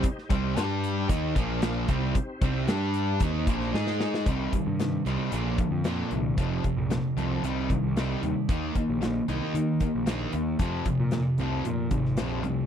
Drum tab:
HH |x-x-x-x-x-x-x-x-|x-x-x-x-x-x-----|x-x-x-x-x-x-x-x-|x-x-x-x-x-x-x-x-|
SD |-o--o-------o---|----o------ooooo|----o-------o---|----o-------o---|
BD |o-o-----o-o---o-|o-o-----o-o-----|o-o-------o-----|o-o-------o-----|

HH |x-x-x-x-x-x-x-x-|x-x-x-x-x-x-x-x-|
SD |----o-------o---|----o-o----oo---|
BD |o-o-------o-----|o-o-------o-----|